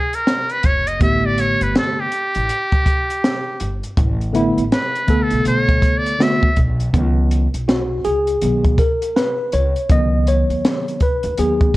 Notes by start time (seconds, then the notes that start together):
Already playing: G#4
0.13 A#4, closed hi-hat
0.27 snare, closed hi-hat
0.49 B4, closed hi-hat
0.63 F#1 C#5, kick, closed hi-hat
0.87 D#5, closed hi-hat
0.99 A1 D3 A3 B3 G4 E5, kick, closed hi-hat
1.26 D5
1.38 C#5, closed hi-hat
1.61 G1 B4, closed hi-hat
1.75 A4, snare, closed hi-hat
2.00 G4
2.11 closed hi-hat
2.34 A1, closed hi-hat
2.49 closed hi-hat
2.72 kick, closed hi-hat
2.86 kick, closed hi-hat
3.10 closed hi-hat
3.24 snare, closed hi-hat
3.60 G1, closed hi-hat
3.84 closed hi-hat
3.97 A1, kick, closed hi-hat
4.21 closed hi-hat
4.33 D3 A3 B3 E4, closed hi-hat
4.57 A1, closed hi-hat
4.72 B4, snare, closed hi-hat
4.96 closed hi-hat
5.08 D3 A3 B3 A4, kick, closed hi-hat
5.23 A4
5.31 B1, closed hi-hat
5.45 B1 C#5, closed hi-hat
5.68 kick, closed hi-hat
5.82 kick, closed hi-hat
5.97 D5
6.06 closed hi-hat
6.19 D3 A3 B3 F#4 E5, snare, closed hi-hat
6.43 kick
6.56 B1, kick, closed hi-hat
6.80 closed hi-hat
6.93 C#2 D#3 F#3 B3, kick, closed hi-hat
7.31 closed hi-hat
7.54 B1, closed hi-hat
7.68 F#4, snare, closed hi-hat
8.04 C#2 G#4, closed hi-hat
8.27 closed hi-hat
8.42 B1 D#3 F#3 B3, closed hi-hat
8.65 kick, closed hi-hat
8.78 A#4, kick, closed hi-hat
9.02 closed hi-hat
9.16 B4, snare, closed hi-hat
9.52 C#2 C#5, closed hi-hat
9.76 closed hi-hat
9.89 C#2 D#3 F#3 B3 D#5, kick, closed hi-hat
10.27 C#5, closed hi-hat
10.49 D#2, closed hi-hat
10.65 snare, closed hi-hat
10.88 closed hi-hat
11.00 B4, kick, closed hi-hat
11.23 D#2, closed hi-hat
11.38 D#2 D#3 F#3 B3 G#4, closed hi-hat
11.61 kick, closed hi-hat